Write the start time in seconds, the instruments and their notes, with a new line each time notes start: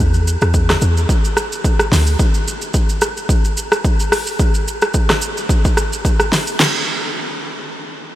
0.00 log drum bass E2
0.14 shaker
0.27 shaker
0.42 log drum bass E2, cross-stick, shaker
0.54 kick, shaker
0.69 cross-stick, snare, shaker
0.81 log drum bass E2, shaker
0.97 shaker
1.09 kick, shaker
1.25 shaker
1.37 cross-stick, shaker
1.52 shaker
1.64 kick, shaker
1.80 cross-stick, shaker
1.92 log drum bass D2, snare, open hi-hat, shaker
2.07 shaker
2.19 kick, shaker
2.34 shaker
2.48 shaker
2.62 shaker
2.74 kick, shaker
2.89 shaker
3.01 cross-stick, shaker
3.17 shaker
3.29 kick, shaker
3.45 shaker
3.57 shaker
3.72 cross-stick, shaker
3.85 kick, shaker
4.00 shaker
4.12 cross-stick, open hi-hat, shaker
4.27 shaker
4.39 kick, shaker
4.54 shaker
4.68 shaker
4.82 cross-stick, shaker
4.94 kick, shaker
5.09 cross-stick, snare, shaker
5.22 shaker
5.37 shaker
5.49 kick, shaker
5.65 kick, shaker
5.77 cross-stick, shaker
5.93 shaker
6.05 kick, shaker
6.20 cross-stick, shaker
6.32 snare, open hi-hat, shaker
6.47 shaker
6.60 snare, crash